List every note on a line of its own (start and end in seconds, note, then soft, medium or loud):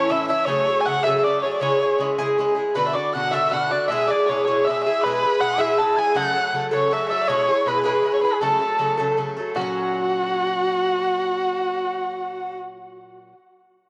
0.00 0.10 C#4 medium
0.00 0.24 A4 medium
0.00 0.13 C#5 medium
0.00 0.12 C#6 medium
0.09 0.28 A2 medium
0.09 0.29 E3 medium
0.09 0.28 C#4 medium
0.09 0.27 E4 medium
0.09 0.29 E5 medium
0.09 0.28 E5 medium
0.09 0.28 E6 medium
0.28 0.47 E3 soft
0.28 0.48 C#4 medium
0.28 0.47 E4 soft
0.28 0.47 E5 medium
0.28 0.47 E6 medium
0.45 0.67 C#3 medium
0.45 0.67 F#3 medium
0.45 0.68 A3 medium
0.45 0.66 G#4 medium
0.45 0.82 C#5 loud
0.45 0.83 C#5 medium
0.45 1.04 C#6 medium
0.67 0.85 F#3 soft
0.67 0.86 A3 soft
0.67 0.85 G#4 soft
0.81 0.88 G#5 medium
0.85 1.04 C#3 medium
0.85 1.05 F#3 medium
0.85 1.05 A3 medium
0.85 1.04 G#4 medium
0.85 1.03 F#5 medium
0.85 1.05 F#5 loud
1.03 1.24 F#3 medium
1.03 1.25 A3 medium
1.03 1.25 G#4 medium
1.03 1.18 E5 medium
1.03 1.22 E5 medium
1.03 1.26 E6 medium
1.07 1.23 C#3 medium
1.18 1.25 E5 soft
1.24 1.43 C#3 medium
1.24 1.43 F#3 medium
1.24 1.44 A3 soft
1.24 1.43 G#4 medium
1.24 1.42 D5 medium
1.24 1.41 D5 medium
1.24 1.44 D6 medium
1.42 1.62 A3 soft
1.42 1.61 G#4 soft
1.42 1.53 C#5 medium
1.42 1.60 C#5 medium
1.42 1.59 C#6 medium
1.47 1.61 F#3 soft
1.53 1.62 D5 medium
1.60 1.81 C#3 medium
1.60 1.81 G#3 medium
1.60 1.81 E4 medium
1.60 1.79 G#4 medium
1.60 2.04 C#5 medium
1.60 2.02 C#5 medium
1.60 2.00 C#6 medium
1.80 1.99 G#3 soft
1.80 1.99 E4 soft
1.80 1.99 G#4 medium
1.98 2.17 C#3 medium
1.98 2.18 G#3 medium
1.98 2.17 E4 medium
1.98 2.17 G#4 medium
2.18 2.37 C#3 medium
2.18 2.38 G#3 medium
2.18 2.38 E4 medium
2.18 2.38 G#4 medium
2.38 2.56 C#3 medium
2.38 2.57 G#3 medium
2.38 2.55 E4 medium
2.38 2.54 G#4 medium
2.55 2.75 G#3 soft
2.55 2.75 E4 soft
2.55 2.74 G#4 medium
2.74 2.95 B2 medium
2.74 2.95 D3 medium
2.74 2.95 D4 medium
2.74 2.93 F#4 medium
2.74 2.94 B4 medium
2.74 2.87 B4 medium
2.74 2.97 B5 medium
2.88 2.97 E5 medium
2.93 3.14 D3 soft
2.93 3.14 D4 medium
2.93 3.13 F#4 medium
2.93 3.28 D5 medium
2.93 3.13 D5 medium
2.93 3.15 D6 medium
3.13 3.32 B2 medium
3.13 3.33 D3 medium
3.13 3.32 D4 medium
3.13 3.31 F#4 medium
3.13 3.35 F#5 medium
3.13 3.31 F#6 medium
3.31 3.52 D3 medium
3.31 3.52 D4 medium
3.31 3.52 F#4 medium
3.31 3.50 E5 medium
3.31 3.55 E5 medium
3.31 3.53 E6 medium
3.35 3.51 B2 medium
3.51 3.70 B2 medium
3.51 3.71 D3 medium
3.51 3.71 D4 medium
3.51 3.70 F#5 medium
3.51 3.73 F#5 medium
3.51 3.88 F#6 medium
3.55 3.70 F#4 medium
3.71 3.90 D3 soft
3.71 3.90 D4 soft
3.71 3.89 F#4 soft
3.71 3.87 D5 medium
3.71 3.92 D5 medium
3.88 4.09 B2 medium
3.88 4.09 G#3 medium
3.88 4.09 E4 medium
3.88 4.07 E5 medium
3.88 4.12 E5 loud
3.88 4.07 E6 medium
3.92 4.07 G#4 medium
4.07 4.28 E4 soft
4.07 4.27 G#4 soft
4.07 4.25 D5 medium
4.07 4.31 D5 loud
4.07 4.46 D6 medium
4.11 4.28 G#3 soft
4.26 4.46 B2 medium
4.26 4.46 G#3 medium
4.26 4.46 E4 medium
4.26 4.44 C#5 medium
4.26 4.46 C#5 medium
4.31 4.46 G#4 medium
4.45 4.66 B2 soft
4.45 4.66 E4 medium
4.45 4.66 G#4 medium
4.45 4.64 C#5 medium
4.45 4.68 C#5 medium
4.45 4.66 C#6 medium
4.49 4.67 G#3 medium
4.64 4.85 B2 medium
4.64 4.81 E5 medium
4.64 4.83 E5 medium
4.64 4.83 E6 medium
4.69 4.86 G#3 soft
4.69 4.86 E4 soft
4.69 4.85 G#4 medium
4.83 5.03 G#4 medium
4.83 5.02 E5 medium
4.83 5.06 E5 medium
4.83 5.03 E6 medium
4.88 5.05 G#3 soft
4.88 5.04 E4 soft
5.01 5.24 B2 medium
5.01 5.38 B4 medium
5.01 5.42 B4 loud
5.01 5.61 B5 medium
5.06 5.24 G#3 medium
5.06 5.24 E4 medium
5.06 5.22 G#4 medium
5.23 5.40 G#3 soft
5.23 5.42 E4 soft
5.23 5.41 G#4 soft
5.41 5.59 B2 medium
5.41 5.59 G#3 medium
5.41 5.58 E4 medium
5.41 5.58 G#4 medium
5.41 5.62 F#5 loud
5.41 5.58 F#5 medium
5.58 5.78 B2 medium
5.58 5.79 G#3 medium
5.58 5.79 E4 medium
5.58 5.79 G#4 medium
5.58 5.79 E5 medium
5.58 5.80 E5 medium
5.58 5.98 E6 medium
5.78 5.97 B2 soft
5.78 5.98 G#3 medium
5.78 5.97 E4 medium
5.78 5.96 G#4 soft
5.78 6.00 A5 medium
5.78 5.98 A5 medium
5.96 6.15 G#3 soft
5.96 6.16 E4 soft
5.96 6.16 G#4 soft
5.96 6.18 G#5 medium
5.96 6.15 G#5 medium
5.96 6.15 G#6 medium
6.15 6.35 C#3 medium
6.15 6.35 F#3 medium
6.15 6.34 A3 medium
6.15 6.32 A4 medium
6.15 6.59 F#5 loud
6.15 6.56 F#5 medium
6.15 6.56 F#6 loud
6.34 6.53 F#3 soft
6.34 6.54 A3 soft
6.34 6.53 A4 medium
6.53 6.72 C#3 soft
6.53 6.71 F#3 medium
6.53 6.71 A3 medium
6.53 6.70 A4 medium
6.71 6.90 C#3 soft
6.71 6.90 F#3 medium
6.71 6.92 A3 medium
6.71 6.92 A4 medium
6.71 6.91 C#5 medium
6.71 6.95 C#5 medium
6.71 7.12 C#6 medium
6.91 7.10 C#3 medium
6.91 7.10 F#3 medium
6.91 7.09 A3 medium
6.91 7.08 A4 medium
6.91 7.10 E5 medium
6.91 7.09 E5 medium
7.09 7.29 F#3 soft
7.09 7.29 A3 soft
7.09 7.28 A4 medium
7.09 7.29 E5 medium
7.09 7.22 E5 medium
7.09 7.30 E6 medium
7.21 7.28 D5 medium
7.28 7.49 B2 medium
7.28 7.49 G#3 medium
7.28 7.49 E4 medium
7.28 7.47 G#4 medium
7.28 7.69 C#5 loud
7.28 7.67 C#5 medium
7.28 7.69 C#6 medium
7.49 7.66 G#3 soft
7.49 7.67 E4 soft
7.49 7.67 G#4 soft
7.66 7.85 B2 medium
7.66 7.85 G#3 medium
7.66 7.84 E4 medium
7.66 7.82 G#4 medium
7.66 7.84 B4 medium
7.66 7.86 B5 medium
7.84 8.02 B2 medium
7.84 8.03 G#3 medium
7.84 8.04 E4 medium
7.84 8.05 G#4 medium
7.84 8.12 B4 medium
7.84 8.13 B4 medium
7.84 8.13 B5 medium
8.03 8.23 B2 medium
8.03 8.23 G#3 medium
8.03 8.22 E4 medium
8.03 8.20 G#4 medium
8.14 8.22 C#5 medium
8.14 8.23 C#5 medium
8.14 8.23 C#6 medium
8.21 8.41 G#3 soft
8.21 8.42 E4 soft
8.21 8.41 G#4 medium
8.21 8.35 B4 medium
8.21 8.41 B4 medium
8.21 8.41 B5 medium
8.34 8.42 G#4 medium
8.40 8.62 C#3 medium
8.40 8.61 F#3 medium
8.40 8.60 A3 medium
8.40 9.18 A4 medium
8.40 9.15 A4 medium
8.40 8.58 A4 medium
8.40 9.15 A5 medium
8.60 8.78 F#3 soft
8.60 8.79 A3 medium
8.60 8.79 A4 soft
8.79 8.98 C#3 medium
8.79 8.98 F#3 medium
8.79 8.97 A3 medium
8.79 8.96 A4 medium
8.98 9.16 C#3 medium
8.98 9.17 F#3 medium
8.98 9.17 A3 medium
8.98 9.18 A4 medium
9.17 9.37 C#3 medium
9.17 9.37 F#3 medium
9.17 9.36 A3 medium
9.17 9.35 A4 medium
9.37 9.56 F#3 soft
9.37 9.56 A3 medium
9.37 9.55 A4 medium
9.55 13.32 A#2 medium
9.55 13.33 F#3 medium
9.55 12.58 F#4 medium
9.55 13.28 F#4 medium
9.55 12.58 F#5 loud
9.59 13.34 C#4 medium
9.59 13.35 F#4 medium